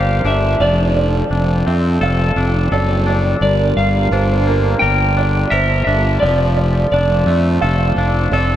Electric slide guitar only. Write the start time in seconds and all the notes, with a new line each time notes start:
Already playing: F5
0.27 E5
0.62 D5
3.42 D5
3.77 F5
4.79 G5
5.50 E5
5.84 E5
6.20 D5
6.92 D5